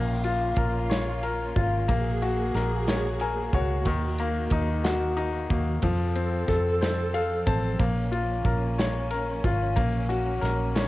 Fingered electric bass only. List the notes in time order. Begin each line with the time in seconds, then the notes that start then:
Already playing: A#1
0.57 A#1
1.56 G#1
1.89 A#1
2.55 A#1
3.53 C#2
3.86 D#2
4.51 D#2
5.50 D#2
5.83 F2
6.48 F2
7.47 A1
7.80 A#1
8.45 A#1
9.44 G#1
9.77 A#1
10.42 A#1